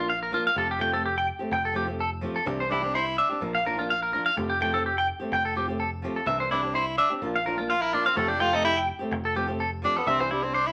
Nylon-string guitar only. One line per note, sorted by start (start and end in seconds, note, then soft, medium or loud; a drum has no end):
0.00 0.12 A#3 soft
0.00 0.11 D4 soft
0.00 0.11 F4 medium
0.31 0.47 F3 medium
0.31 0.47 A#3 medium
0.31 0.48 D4 medium
0.31 0.48 F4 medium
0.55 0.71 F3 medium
0.55 0.72 C4 medium
0.55 0.72 G4 medium
0.55 muted nylon-string guitar stroke medium
0.79 0.92 F3 medium
0.79 0.93 A3 medium
0.79 0.92 C4 medium
0.79 0.90 G4 medium
0.92 1.07 A3 soft
0.92 1.07 C4 medium
0.92 1.06 G4 medium
1.39 1.55 A3 medium
1.39 1.54 C4 medium
1.39 1.54 G4 medium
1.74 1.87 F3 medium
1.74 1.88 A3 medium
1.74 1.87 C4 medium
1.74 1.86 G4 medium
1.87 2.03 A3 soft
1.87 2.02 C4 medium
1.87 2.01 G4 medium
2.21 2.37 F3 medium
2.21 2.38 A3 medium
2.21 2.38 C4 medium
2.21 2.39 G4 medium
2.45 2.61 E3 medium
2.45 2.61 C4 medium
2.45 2.62 D4 medium
2.45 2.62 G4 medium
2.69 2.83 E3 medium
2.69 2.83 C4 medium
2.69 2.82 D4 medium
2.69 2.81 G4 medium
2.82 2.98 C4 soft
2.82 2.97 D4 soft
2.82 2.96 G4 medium
3.29 3.41 C4 soft
3.29 3.41 D4 soft
3.29 3.41 G4 medium
3.40 3.56 F3 medium
3.40 3.57 A#3 medium
3.40 3.57 D4 medium
3.40 3.57 F4 medium
3.65 3.78 F3 medium
3.65 3.78 A#3 medium
3.65 3.77 D4 medium
3.65 3.76 F4 medium
3.77 3.93 A#3 medium
3.77 3.92 D4 medium
3.77 3.92 F4 medium
4.12 4.28 F3 medium
4.12 4.29 D4 medium
4.12 4.29 F4 medium
4.36 4.52 A3 medium
4.36 4.52 C4 medium
4.36 4.52 G4 loud
4.36 muted nylon-string guitar stroke medium
4.60 4.73 F3 medium
4.60 4.74 A3 medium
4.60 4.73 C4 medium
4.60 4.72 G4 medium
4.73 4.88 A3 soft
4.73 4.88 C4 soft
4.73 4.87 G4 medium
5.20 5.36 A3 soft
5.20 5.35 C4 medium
5.20 5.34 G4 medium
5.55 5.68 F3 medium
5.55 5.68 C4 medium
5.55 5.67 G4 medium
5.55 muted nylon-string guitar stroke medium
5.68 5.83 A3 soft
5.68 5.83 C4 medium
5.68 5.82 G4 medium
6.02 6.18 F3 medium
6.02 6.18 A3 medium
6.02 6.19 C4 medium
6.02 6.19 G4 medium
6.26 6.42 E3 medium
6.26 6.42 C4 medium
6.26 6.42 D4 medium
6.26 muted nylon-string guitar stroke medium
6.50 6.63 E3 medium
6.50 6.64 C4 medium
6.50 6.64 D4 medium
6.50 6.61 G4 medium
6.63 6.79 C4 soft
6.63 6.78 D4 soft
6.63 6.77 G4 soft
7.10 7.22 C4 soft
7.10 7.22 D4 medium
7.10 7.22 G4 medium
7.22 7.37 F3 medium
7.22 7.37 A#3 medium
7.22 7.37 D4 medium
7.22 7.38 F4 medium
7.45 7.58 F3 medium
7.45 7.57 D4 medium
7.45 7.56 F4 medium
7.57 7.73 A#3 soft
7.57 7.72 D4 medium
7.57 7.72 F4 medium
7.92 8.08 F3 medium
7.92 8.08 A#3 medium
7.92 8.09 D4 medium
7.92 8.09 F4 medium
8.15 8.31 F3 medium
8.15 8.31 A3 medium
8.15 8.32 C4 medium
8.15 8.32 G4 medium
8.39 8.53 F3 medium
8.39 8.53 A3 medium
8.39 8.52 C4 medium
8.39 8.50 G4 medium
8.51 8.68 A3 soft
8.51 8.67 C4 soft
8.51 8.66 G4 medium
8.99 9.15 A3 medium
8.99 9.15 C4 medium
8.99 9.14 G4 medium
9.34 9.48 F3 medium
9.34 9.48 A3 medium
9.34 9.47 C4 medium
9.34 9.46 G4 medium
9.47 9.63 A3 medium
9.47 9.62 C4 medium
9.47 9.62 G4 medium
9.82 9.98 F3 medium
9.82 9.98 A3 medium
9.82 9.99 C4 medium
9.82 9.99 G4 medium
10.06 10.21 E3 medium
10.06 10.22 C4 medium
10.06 10.22 D4 medium
10.06 10.22 G4 medium
10.30 10.44 C4 medium
10.30 10.43 D4 medium
10.30 10.41 G4 medium
10.30 muted nylon-string guitar stroke medium
10.42 10.58 C4 soft
10.42 10.57 D4 soft
10.42 muted nylon-string guitar stroke medium